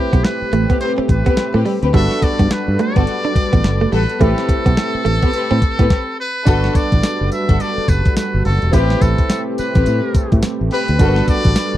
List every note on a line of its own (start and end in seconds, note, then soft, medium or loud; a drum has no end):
0.00 1.91 A3 medium
0.00 1.89 C4 medium
0.00 1.92 C4 medium
0.00 1.90 E4 medium
0.00 0.26 G4 loud
0.00 1.90 G4 medium
0.00 1.92 G4 medium
0.00 1.91 B4 medium
0.13 0.21 B1 medium
0.13 0.20 B3 medium
0.13 kick medium
0.13 closed hi-hat medium
0.25 0.80 B4 medium
0.25 muted clean electric guitar stroke soft
0.25 snare loud
0.25 closed hi-hat medium
0.42 muted fingered electric bass stroke soft
0.53 0.65 A1 medium
0.53 0.64 A3 medium
0.53 closed hi-hat medium
0.69 0.77 B3 medium
0.69 0.80 C4 medium
0.69 0.80 G4 medium
0.69 0.80 B4 medium
0.69 kick medium
0.69 closed hi-hat medium
0.81 1.00 C4 medium
0.81 1.00 G4 medium
0.81 1.00 B4 medium
0.81 0.94 C5 medium
0.81 closed hi-hat medium
0.98 1.05 C4 medium
0.98 muted fingered electric bass stroke soft
1.09 1.22 A1 medium
1.09 1.62 B4 medium
1.09 muted clean electric guitar stroke soft
1.09 kick medium
1.09 closed hi-hat medium
1.26 1.33 B3 medium
1.26 1.40 C4 medium
1.26 1.40 G4 medium
1.26 1.40 B4 medium
1.26 kick loud
1.26 closed hi-hat medium
1.37 muted clean electric guitar stroke soft
1.37 snare loud
1.37 closed hi-hat medium
1.54 1.63 A2 medium
1.54 1.62 A3 medium
1.54 1.68 C4 medium
1.54 1.68 G4 medium
1.54 1.68 B4 medium
1.65 1.77 G3 medium
1.65 open hi-hat medium
1.82 1.91 D2 medium
1.82 1.96 C4 medium
1.82 1.97 G4 medium
1.82 1.97 B4 medium
1.82 closed hi-hat medium
1.93 2.07 G1 loud
1.93 4.18 G3 medium
1.93 2.05 G3 medium
1.93 2.20 B3 medium
1.93 4.16 D4 medium
1.93 4.18 F#4 medium
1.93 2.20 F#4 medium
1.93 4.16 F#4 medium
1.93 4.18 A4 medium
1.93 2.21 A4 medium
1.93 4.17 A4 medium
1.93 4.18 B4 medium
1.93 4.17 B4 medium
1.93 2.25 E5 loud
1.93 kick loud
1.93 closed hi-hat medium
2.11 snare medium
2.22 2.54 D5 loud
2.22 muted clean electric guitar stroke soft
2.22 muted fingered electric bass stroke soft
2.22 kick medium
2.22 closed hi-hat medium
2.39 2.48 G2 loud
2.39 2.47 B3 medium
2.39 kick medium
2.39 closed hi-hat medium
2.51 2.82 B4 medium
2.51 muted clean electric guitar stroke soft
2.51 muted fingered electric bass stroke soft
2.51 snare loud
2.51 closed hi-hat medium
2.68 2.76 G2 medium
2.79 2.90 A3 medium
2.79 3.93 D5 loud
2.79 closed hi-hat medium
2.95 3.04 G1 medium
2.95 3.10 B3 medium
2.95 3.04 B3 medium
2.95 3.10 F#4 medium
2.95 3.10 A4 medium
2.95 kick medium
2.95 closed hi-hat medium
3.07 closed hi-hat medium
3.25 3.32 D4 medium
3.35 muted fingered electric bass stroke soft
3.35 muted clean electric guitar stroke soft
3.35 kick medium
3.35 closed hi-hat medium
3.53 3.61 A1 loud
3.53 3.60 B3 medium
3.53 kick medium
3.53 closed hi-hat medium
3.64 3.85 F#1 medium
3.64 muted clean electric guitar stroke soft
3.64 snare loud
3.64 closed hi-hat medium
3.81 3.88 A3 medium
3.92 4.05 A1 medium
3.92 4.03 G3 medium
3.92 4.11 B3 medium
3.92 4.11 F#4 medium
3.92 4.11 A4 medium
3.92 4.24 B4 loud
3.92 open hi-hat medium
4.09 closed hi-hat medium
4.20 4.33 A1 loud
4.20 5.88 A3 medium
4.20 4.32 A3 loud
4.20 5.86 C4 medium
4.20 4.47 C4 medium
4.20 5.88 C4 medium
4.20 5.87 E4 medium
4.20 4.47 G4 medium
4.20 5.88 G4 medium
4.20 5.87 G4 medium
4.20 6.19 A4 loud
4.20 4.47 B4 loud
4.20 5.88 B4 medium
4.20 kick loud
4.20 closed hi-hat medium
4.38 snare medium
4.49 muted clean electric guitar stroke soft
4.49 kick medium
4.49 closed hi-hat medium
4.66 4.74 B1 loud
4.66 4.73 B3 medium
4.66 kick medium
4.66 closed hi-hat medium
4.77 muted clean electric guitar stroke soft
4.77 snare loud
4.77 closed hi-hat medium
4.95 muted fingered electric bass stroke soft
5.05 5.18 A1 medium
5.05 5.16 A3 medium
5.05 closed hi-hat medium
5.22 5.30 B3 medium
5.22 5.32 C4 medium
5.22 5.32 G4 medium
5.22 5.32 B4 medium
5.22 kick medium
5.22 closed hi-hat soft
5.33 5.52 C4 medium
5.33 5.52 G4 medium
5.33 5.52 B4 medium
5.33 closed hi-hat medium
5.51 5.59 A2 loud
5.51 5.58 C4 medium
5.62 muted clean electric guitar stroke soft
5.62 kick medium
5.62 closed hi-hat medium
5.79 5.88 A2 loud
5.79 5.86 B3 medium
5.79 5.93 C4 medium
5.79 5.93 G4 medium
5.79 5.93 B4 medium
5.79 kick loud
5.79 closed hi-hat medium
5.90 kick loud
5.90 snare loud
6.20 6.78 B4 loud
6.45 6.68 G1 loud
6.45 8.71 G3 medium
6.45 6.73 B3 medium
6.45 8.68 D4 medium
6.45 8.69 F#4 medium
6.45 6.73 F#4 medium
6.45 8.71 F#4 medium
6.45 6.73 A4 loud
6.45 8.69 A4 medium
6.45 8.71 A4 medium
6.45 8.71 B4 medium
6.45 8.70 B4 medium
6.45 kick loud
6.45 closed hi-hat medium
6.45 tambourine medium
6.64 snare medium
6.75 7.32 D5 loud
6.75 kick loud
6.75 closed hi-hat medium
6.75 tambourine medium
6.92 7.00 A1 medium
6.92 kick medium
6.92 closed hi-hat medium
7.03 snare loud
7.03 closed hi-hat medium
7.03 tambourine loud
7.21 7.29 F#1 medium
7.32 7.63 E5 medium
7.32 closed hi-hat medium
7.32 tambourine medium
7.48 7.57 G1 medium
7.48 7.62 B3 medium
7.48 7.62 F#4 medium
7.48 7.63 A4 medium
7.48 kick medium
7.48 closed hi-hat medium
7.60 7.91 D5 loud
7.60 closed hi-hat medium
7.60 tambourine medium
7.78 muted fingered electric bass stroke soft
7.88 8.01 F#1 medium
7.88 8.17 B4 loud
7.88 kick medium
7.88 closed hi-hat medium
7.88 tambourine medium
8.05 kick loud
8.05 closed hi-hat medium
8.17 8.43 B4 medium
8.17 snare loud
8.17 closed hi-hat medium
8.17 tambourine loud
8.34 8.42 G1 medium
8.45 8.58 F#1 medium
8.45 8.75 A4 medium
8.45 open hi-hat medium
8.62 8.71 E1 medium
8.62 closed hi-hat medium
8.72 8.94 A1 loud
8.72 10.97 A3 medium
8.72 10.95 C4 medium
8.72 9.00 C4 medium
8.72 10.97 C4 medium
8.72 10.95 E4 medium
8.72 10.97 G4 medium
8.72 9.00 G4 medium
8.72 10.96 G4 medium
8.72 9.03 G4 loud
8.72 9.00 B4 loud
8.72 10.96 B4 medium
8.72 kick loud
8.72 closed hi-hat medium
8.72 tambourine medium
8.90 snare medium
9.01 9.14 A1 medium
9.01 9.42 A4 medium
9.01 kick loud
9.01 closed hi-hat medium
9.01 tambourine medium
9.18 kick medium
9.18 closed hi-hat medium
9.30 snare loud
9.30 closed hi-hat medium
9.30 tambourine loud
9.58 10.39 B4 medium
9.58 muted fingered electric bass stroke soft
9.58 closed hi-hat medium
9.58 tambourine medium
9.75 9.84 A1 medium
9.75 9.89 C4 medium
9.75 9.89 G4 medium
9.75 9.89 B4 medium
9.75 kick medium
9.75 closed hi-hat medium
9.86 10.00 A2 loud
9.86 closed hi-hat medium
9.86 tambourine medium
10.14 muted fingered electric bass stroke soft
10.14 kick loud
10.14 closed hi-hat medium
10.14 tambourine medium
10.32 10.41 A2 loud
10.32 kick loud
10.32 closed hi-hat medium
10.42 muted fingered electric bass stroke soft
10.42 snare loud
10.42 closed hi-hat medium
10.42 tambourine medium
10.61 10.69 A1 medium
10.71 10.90 C4 medium
10.71 10.90 G4 medium
10.71 10.90 B4 medium
10.71 11.25 B4 loud
10.71 open hi-hat medium
10.88 10.97 D2 medium
10.88 closed hi-hat medium
10.98 11.20 G1 loud
10.98 11.77 G3 medium
10.98 11.26 B3 medium
10.98 11.77 D4 medium
10.98 11.77 F#4 medium
10.98 11.26 F#4 medium
10.98 11.77 A4 medium
10.98 11.27 A4 loud
10.98 11.08 A#4 medium
10.98 11.77 B4 medium
10.98 kick loud
10.98 closed hi-hat medium
10.98 tambourine medium
11.08 11.77 B4 medium
11.16 snare medium
11.28 11.77 D5 loud
11.28 kick medium
11.28 closed hi-hat medium
11.28 tambourine medium
11.45 11.53 A1 medium
11.45 kick medium
11.45 closed hi-hat medium
11.56 snare loud
11.56 closed hi-hat medium
11.56 tambourine loud